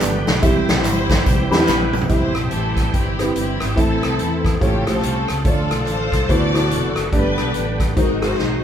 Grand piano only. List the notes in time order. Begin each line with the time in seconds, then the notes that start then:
Already playing: B3 D4 G4 D5
0.42 C3 C4 E4 G4 E5
1.51 C4 D4 G4 B5
1.56 E4
2.08 C3 C4 E4 G4 D#5
2.14 E5
3.19 C4 D#4 G4 B4
3.24 E4
3.75 A2 C4 E4 A4 E5
4.61 A2 A3 F4 G4 C#5
4.87 A3 F4 G4 C5
4.93 C5
5.44 D3 A3 D4 F4 C#5
5.50 D5
6.29 D3 B3 E4 F#4 C5
6.54 B2 E4 F#4 C5
7.11 G2 A3 D4 G4 D5
7.17 B3
7.96 G#2 G#3 D#4 F#4 C5
8.21 G#3 D#4 F#4 A#4
8.27 C5